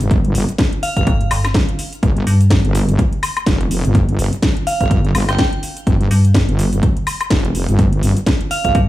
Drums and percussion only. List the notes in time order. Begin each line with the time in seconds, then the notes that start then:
0.01 closed hi-hat, shaker
0.11 kick, closed hi-hat, shaker
0.25 closed hi-hat
0.35 open hi-hat, shaker
0.49 closed hi-hat, shaker
0.58 kick, snare, closed hi-hat, shaker
0.73 closed hi-hat
0.83 open hi-hat, shaker
0.97 kick, closed hi-hat, shaker
1.07 kick, closed hi-hat, shaker
1.21 closed hi-hat
1.31 open hi-hat, high woodblock, shaker
1.44 snare, closed hi-hat, high woodblock, shaker
1.54 kick, snare, closed hi-hat, shaker
1.69 closed hi-hat
1.79 open hi-hat, shaker
1.93 closed hi-hat, shaker
2.03 kick, closed hi-hat, shaker
2.17 closed hi-hat
2.27 open hi-hat, shaker
2.41 closed hi-hat, shaker
2.50 kick, snare, closed hi-hat, shaker
2.65 closed hi-hat
2.75 open hi-hat, shaker
2.89 closed hi-hat, shaker
2.99 kick, closed hi-hat, shaker
3.13 closed hi-hat
3.23 open hi-hat, high woodblock, shaker
3.37 closed hi-hat, high woodblock, shaker
3.46 kick, snare, closed hi-hat, shaker
3.61 closed hi-hat
3.71 open hi-hat, shaker
3.85 closed hi-hat, shaker
3.95 kick, closed hi-hat, shaker
4.09 closed hi-hat
4.19 open hi-hat, shaker
4.33 closed hi-hat, shaker
4.42 kick, snare, closed hi-hat, shaker
4.57 closed hi-hat
4.67 open hi-hat, shaker
4.81 kick, closed hi-hat, shaker
4.91 kick, closed hi-hat, shaker
5.05 closed hi-hat
5.15 open hi-hat, high woodblock, shaker
5.28 snare, closed hi-hat, high woodblock, shaker
5.38 kick, snare, closed hi-hat, shaker
5.53 closed hi-hat
5.63 open hi-hat, shaker
5.77 closed hi-hat, shaker
5.87 kick, closed hi-hat, shaker
6.01 closed hi-hat
6.11 open hi-hat, shaker
6.25 closed hi-hat, shaker
6.34 kick, snare, closed hi-hat, shaker
6.49 closed hi-hat
6.59 open hi-hat, shaker
6.73 closed hi-hat, shaker
6.83 kick, closed hi-hat, shaker
6.97 closed hi-hat
7.07 open hi-hat, high woodblock, shaker
7.21 closed hi-hat, high woodblock, shaker
7.30 kick, snare, closed hi-hat, shaker
7.45 closed hi-hat
7.55 open hi-hat, shaker
7.69 closed hi-hat, shaker
7.79 kick, closed hi-hat, shaker
7.93 closed hi-hat
8.03 open hi-hat, shaker
8.17 closed hi-hat, shaker
8.26 kick, snare, closed hi-hat, shaker
8.41 closed hi-hat
8.51 open hi-hat, shaker
8.65 kick, closed hi-hat, shaker
8.75 kick, closed hi-hat, shaker